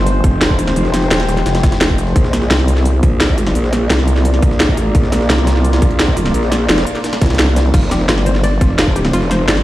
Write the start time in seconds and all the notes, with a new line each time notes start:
Already playing: G1 G#3 G4 C5
0.06 closed hi-hat
0.24 F1, kick, closed hi-hat
0.41 snare, closed hi-hat
0.50 kick
0.59 closed hi-hat
0.68 snare
0.76 F1, closed hi-hat
0.85 snare
0.94 snare, closed hi-hat
1.02 snare
1.11 D#1, snare, closed hi-hat
1.20 snare, closed hi-hat
1.29 snare, closed hi-hat
1.37 snare, closed hi-hat
1.46 F1, snare, closed hi-hat
1.55 snare, closed hi-hat
1.63 kick, snare, closed hi-hat
1.72 snare, closed hi-hat
1.81 snare, closed hi-hat
1.90 kick
1.98 closed hi-hat
2.07 snare
2.16 A#1 A#3 F4 D5, kick, closed hi-hat
2.24 snare
2.33 snare, closed hi-hat
2.42 snare
2.51 C2, snare, closed hi-hat
2.59 snare
2.68 closed hi-hat
2.77 snare
2.85 closed hi-hat
3.03 A#1, kick, closed hi-hat
3.20 snare, closed hi-hat
3.29 kick
3.38 closed hi-hat
3.47 snare
3.55 A#1, closed hi-hat
3.64 snare
3.73 snare, closed hi-hat
3.90 C2, snare, closed hi-hat
3.99 snare
4.08 closed hi-hat
4.16 snare
4.25 closed hi-hat
4.34 snare
4.42 A#1, kick, closed hi-hat
4.51 snare
4.60 snare, closed hi-hat
4.69 kick
4.77 closed hi-hat
4.95 A#1, kick, closed hi-hat
5.03 snare
5.12 snare, closed hi-hat
5.21 snare
5.30 C2, snare, closed hi-hat
5.38 snare
5.47 snare, closed hi-hat
5.56 snare
5.64 closed hi-hat
5.73 snare, closed hi-hat
5.82 A#1, kick, closed hi-hat
5.91 closed hi-hat
5.99 snare, closed hi-hat
6.08 kick
6.17 closed hi-hat
6.26 snare
6.34 A#1, closed hi-hat
6.43 snare
6.52 snare, closed hi-hat
6.69 F1, snare, closed hi-hat
6.78 snare, closed hi-hat
6.87 closed hi-hat
6.95 snare, closed hi-hat
7.04 snare, closed hi-hat
7.13 snare, closed hi-hat
7.21 C2, kick, snare, closed hi-hat
7.26 snare, closed hi-hat
7.30 snare, closed hi-hat
7.35 snare, closed hi-hat
7.39 snare, closed hi-hat
7.56 snare, closed hi-hat
7.65 snare
7.74 F1 G#3 F4 C5, kick, closed hi-hat, ride, crash
7.82 snare
7.91 G4, snare, closed hi-hat
8.00 snare
8.09 G1 F4, snare, closed hi-hat, ride
8.17 snare
8.26 C5, closed hi-hat
8.35 snare
8.44 D5, closed hi-hat, ride
8.61 F1 F4, kick, closed hi-hat
8.78 F4, snare, closed hi-hat, ride
8.87 kick
8.96 G4, closed hi-hat
9.05 snare
9.13 F1 F4, closed hi-hat, ride
9.22 snare
9.31 C5, snare, closed hi-hat
9.48 G1 D5, snare, closed hi-hat, ride
9.57 snare